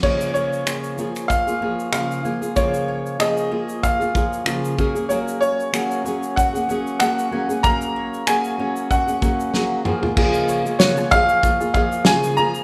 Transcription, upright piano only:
X:1
M:4/4
L:1/8
Q:"Swing 16ths" 1/4=95
K:Db
V:1 name="Upright piano"
d d3 f2 f2 | d2 e2 f3 z | d d3 g2 g2 | b2 a2 g3 z |
z2 d f2 f a b |]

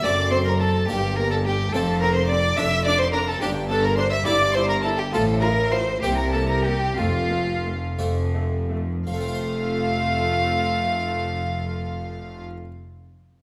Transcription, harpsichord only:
X:1
M:6/8
L:1/8
Q:3/8=65
K:F
V:1 name="Harpsichord"
[^F,,A,CD]3 [G,,B,D]3 | [F,,A,CF]3 [F,,A,DA]3 | [G,,B,DG]3 [G,,B,EG]3 | [A,,CF]3 [C,B,CE]3 |
F,,3 [F,,A,CF]3 | [F,A,CFc]6- | [F,A,CFc]6 |]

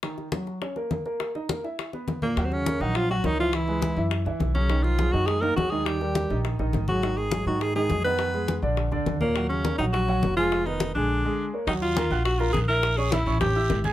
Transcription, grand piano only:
X:1
M:4/4
L:1/8
Q:1/4=206
K:Ebm
V:1 name="Grand piano"
[E,E]2 [G,G]2 [Dd] [B,B]2 [B,B]- | [B,B] [Ee] [B,B] [_F_f]2 [=B,=B]2 [_B,_B] | [G,Gg]2 [B,Bd] [G,Gg]2 [G,Gg] [B,Bd] [_F,_F_f]- | [_F,_F_f] [A,Ac]2 [F,Ff]2 [F,Ff]2 [G,GA] |
[^D,^D^d]2 [^F,^F^G] [D,Dd]2 [D,Dd] [F,G] [D,Dd]- | [^D,^D^d] [=G,=GB]2 [E,Ee]2 [E,Ee]2 [_G,_GA] | [E,Ee]2 [G,GA] [E,Ee]2 [E,Ee] [G,GA] [E,Ee]- | [E,Ee] [A,Ac]2 [=D,=D=d]2 [D,Dd]2 [B,B_d] |
[G,Gg]2 [B,Bd] [G,Gg]2 [G,Gg] [B,Bd] [A,Aa]- | [A,Aa] [Cce]2 [A,Aa]2 [A,Aa]2 [B,Bd] | [G,Gg]2 [B,Bb] [Ggg']2 [B,Bb]2 [_F_f_f']- | [_F_f_f'] [Ddd'] [Fff'] [Ddd']2 [=E=e=e']2 [Aaa'] |]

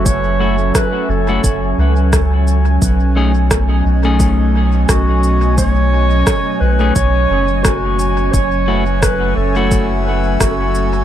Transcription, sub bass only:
X:1
M:4/4
L:1/8
Q:"Swing 16ths" 1/4=87
K:F#dor
V:1 name="Sub bass" clef=bass
F,,,2 z F,,, F,,, C,,3 | B,,,3 B,,,3 B,,,2- | B,,,2 z B,,, B,,, F,,,3 | F,,,3 F,,,3 F,,,2 |]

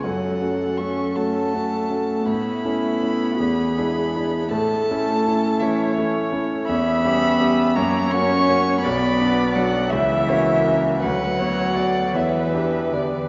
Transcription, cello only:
X:1
M:6/8
L:1/8
Q:3/8=54
K:A
V:1 name="Cello"
F,2 C A,3 | B,6 | A,3 E, z2 | [K:Bm] B,3 ^A, C2 |
B,2 F, E,3 | F,3 E,2 D, |]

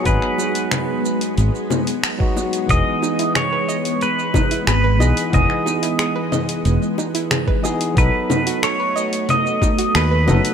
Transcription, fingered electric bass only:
X:1
M:4/4
L:1/8
Q:1/4=91
K:E
V:1 name="Fingered electric bass" clef=bass
G,,, z3 G,,, z3 | E,,, z4 z G,,, B,,, | E,,, z3 E,,, z3 | B,,, z4 z D,, F,,, |]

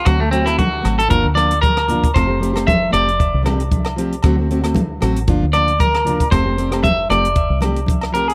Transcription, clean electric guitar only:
X:1
M:4/4
L:1/16
Q:"Swing 16ths" 1/4=115
K:F
V:1 name="Clean electric guitar"
^F A, C E F3 A B2 d2 B4 | c4 e2 d4 z6 | z8 z2 d2 B4 | c4 e2 d4 z4 B _A |]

